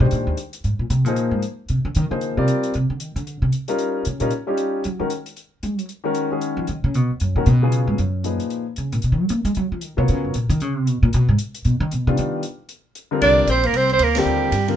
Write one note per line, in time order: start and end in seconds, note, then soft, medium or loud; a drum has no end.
0.00 0.11 B2 loud
0.00 0.35 D#3 medium
0.00 0.36 G#3 medium
0.00 0.36 D4 soft
0.00 0.36 G4 medium
0.00 0.36 C5 medium
0.11 0.26 A#2 medium
0.11 closed hi-hat soft
0.27 0.33 D#2 medium
0.37 closed hi-hat medium
0.53 closed hi-hat soft
0.64 0.79 G#2 medium
0.64 closed hi-hat soft
0.79 0.89 A#2 medium
0.90 1.04 C3 medium
0.90 closed hi-hat medium
1.04 1.31 A#2 medium
1.04 1.41 F3 medium
1.04 1.41 A#3 medium
1.04 1.42 D#4 medium
1.04 1.42 G#4 medium
1.04 1.42 C5 medium
1.04 closed hi-hat soft
1.16 closed hi-hat soft
1.31 1.42 G#2 medium
1.42 closed hi-hat soft
1.69 1.84 C3 medium
1.69 closed hi-hat soft
1.85 1.95 D3 medium
1.95 2.11 D#3 loud
1.95 closed hi-hat medium
2.10 2.36 D3 medium
2.10 2.35 F3 soft
2.10 2.36 A#3 soft
2.10 2.36 D#4 soft
2.10 2.36 G#4 medium
2.10 2.36 C5 medium
2.21 closed hi-hat soft
2.37 2.48 C3 medium
2.37 2.72 G3 medium
2.37 2.72 C4 medium
2.37 2.72 F4 medium
2.37 2.72 A#4 medium
2.37 2.73 D5 medium
2.48 closed hi-hat soft
2.63 closed hi-hat medium
2.74 2.89 C3 medium
2.74 closed hi-hat soft
2.90 3.01 D3 medium
3.00 3.15 D#3 loud
3.00 closed hi-hat medium
3.16 3.40 D3 medium
3.16 closed hi-hat soft
3.27 closed hi-hat soft
3.42 3.48 C3 medium
3.52 closed hi-hat soft
3.68 4.03 G3 medium
3.68 4.03 C#4 medium
3.68 4.03 D#4 medium
3.68 4.03 F4 medium
3.68 4.04 A#4 medium
3.68 closed hi-hat soft
3.79 closed hi-hat soft
4.05 4.20 C#3 medium
4.05 closed hi-hat medium
4.20 4.31 A#2 medium
4.20 4.30 G3 medium
4.20 4.30 C#4 medium
4.20 4.30 D#4 medium
4.20 4.31 F4 medium
4.20 4.31 A#4 medium
4.20 closed hi-hat soft
4.30 closed hi-hat soft
4.47 4.82 G3 medium
4.47 4.82 C#4 medium
4.47 4.82 D#4 medium
4.47 4.82 F4 medium
4.47 4.82 G4 medium
4.57 closed hi-hat soft
4.84 4.99 F#3 medium
4.84 closed hi-hat soft
4.99 5.09 D#3 medium
4.99 5.10 D#3 medium
4.99 5.09 G#3 medium
4.99 5.09 C#4 medium
4.99 5.10 F#4 medium
4.99 5.10 A#4 medium
5.10 closed hi-hat medium
5.26 closed hi-hat soft
5.36 closed hi-hat soft
5.63 5.78 G#3 medium
5.63 closed hi-hat soft
5.78 5.84 F#3 loud
5.78 closed hi-hat soft
5.89 closed hi-hat soft
6.04 6.29 D#3 medium
6.04 6.29 G#3 medium
6.04 6.29 C#4 medium
6.04 6.29 F#4 medium
6.04 6.30 A#4 medium
6.15 closed hi-hat medium
6.31 6.66 D#3 medium
6.31 6.66 G#3 medium
6.31 6.66 C#4 medium
6.31 6.66 F#4 medium
6.31 6.66 G#4 medium
6.41 closed hi-hat soft
6.57 6.67 F3 medium
6.67 6.83 D#3 medium
6.67 closed hi-hat soft
6.84 6.95 C#3 loud
6.94 7.09 B2 medium
6.94 closed hi-hat soft
7.10 7.20 D#2 soft
7.20 7.35 F#2 medium
7.20 closed hi-hat soft
7.36 7.46 A#2 medium
7.36 7.46 D#3 medium
7.36 7.46 G#3 medium
7.36 7.46 C#4 medium
7.36 7.46 F#4 medium
7.36 7.46 A#4 medium
7.46 7.85 B2 loud
7.46 closed hi-hat soft
7.62 7.97 C#3 medium
7.62 7.97 F#3 medium
7.62 7.97 B3 medium
7.62 7.97 F4 medium
7.62 7.98 G#4 medium
7.72 closed hi-hat medium
7.88 7.98 G#2 medium
7.98 8.38 F#2 medium
7.98 closed hi-hat soft
8.24 8.63 A#2 soft
8.24 8.63 F3 soft
8.24 8.64 D#4 soft
8.24 8.64 G#4 soft
8.24 8.64 B4 soft
8.24 closed hi-hat medium
8.40 closed hi-hat soft
8.50 closed hi-hat soft
8.76 8.92 C#3 medium
8.76 closed hi-hat soft
8.92 9.03 A#2 medium
8.92 closed hi-hat medium
9.02 9.12 B2 medium
9.02 closed hi-hat soft
9.12 9.21 D#3 medium
9.21 9.30 F#3 loud
9.29 9.44 A#3 loud
9.29 closed hi-hat medium
9.45 9.55 G#3 loud
9.45 closed hi-hat soft
9.55 9.71 F#3 medium
9.55 closed hi-hat soft
9.72 9.83 F3 medium
9.81 9.97 D#3 medium
9.81 closed hi-hat medium
9.97 10.08 C3 loud
9.97 10.32 F#3 medium
9.97 10.32 B3 medium
9.97 10.32 F4 medium
9.97 10.32 A#4 soft
9.97 10.33 C#5 medium
10.08 10.24 C#3 medium
10.08 closed hi-hat soft
10.24 10.34 F#2 medium
10.34 10.49 A#2 medium
10.34 closed hi-hat medium
10.49 10.61 D#3 loud
10.49 closed hi-hat soft
10.60 10.77 C#3 medium
10.60 closed hi-hat soft
10.77 10.88 C3 loud
10.87 11.02 B2 medium
10.87 closed hi-hat medium
11.03 11.13 A#2 loud
11.13 11.28 B2 loud
11.13 closed hi-hat medium
11.29 11.35 G#2 loud
11.38 closed hi-hat medium
11.55 closed hi-hat soft
11.65 11.80 B2 medium
11.65 closed hi-hat soft
11.80 11.91 D#3 loud
11.91 12.07 B2 medium
11.91 closed hi-hat medium
12.07 12.17 C#3 loud
12.07 12.41 D#3 medium
12.07 12.42 G3 medium
12.07 12.42 B3 medium
12.07 12.42 D4 medium
12.07 12.42 F4 medium
12.17 12.42 D#3 loud
12.17 closed hi-hat soft
12.43 closed hi-hat medium
12.69 closed hi-hat soft
12.95 closed hi-hat medium
13.11 13.46 D3 medium
13.11 13.46 G3 medium
13.11 13.46 C4 medium
13.11 13.46 F4 medium
13.11 13.46 A#4 medium
13.22 13.47 C2 medium
13.22 13.46 D4 medium
13.22 13.47 D5 loud
13.22 ride medium
13.47 13.72 A#1 medium
13.47 13.66 C4 medium
13.47 13.68 C5 medium
13.47 hi-hat pedal medium
13.47 ride medium
13.63 13.78 A#3 medium
13.63 13.78 A#4 medium
13.63 ride soft
13.73 13.99 C2 medium
13.73 13.91 C4 medium
13.73 ride medium
13.77 13.91 C5 loud
13.89 14.04 C4 medium
13.89 14.05 C5 medium
13.89 ride soft
13.99 14.25 D2 medium
13.99 14.19 A#3 medium
13.99 hi-hat pedal soft
13.99 ride medium
14.03 14.20 A#4 medium
14.15 14.51 D3 medium
14.15 14.51 G3 medium
14.15 14.69 G3 medium
14.15 14.51 C4 medium
14.15 14.51 F4 medium
14.15 14.51 A#4 medium
14.15 snare medium
14.15 ride medium
14.19 14.70 G4 medium
14.25 14.51 D#2 medium
14.52 14.76 G2 medium
14.52 hi-hat pedal medium
14.52 ride medium
14.68 14.76 D3 medium
14.68 14.76 G3 medium
14.68 14.76 C4 medium
14.68 14.76 F4 medium
14.68 14.76 A#4 medium
14.68 ride soft